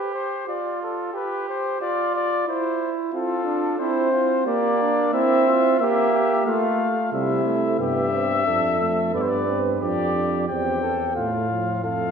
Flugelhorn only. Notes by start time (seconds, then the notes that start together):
Already playing: G4
0.47 F4
1.14 G4
1.81 F4
2.47 E4
3.13 C4
3.45 D4
3.80 E4
4.12 F4
4.46 G4
4.81 D4
5.14 E4
5.47 F4
5.82 G4
6.14 G4
6.47 F4
7.13 E4
7.80 G4
8.46 A4
9.14 B4
9.81 G4
10.48 G4
10.82 A4
11.15 F4
11.84 A4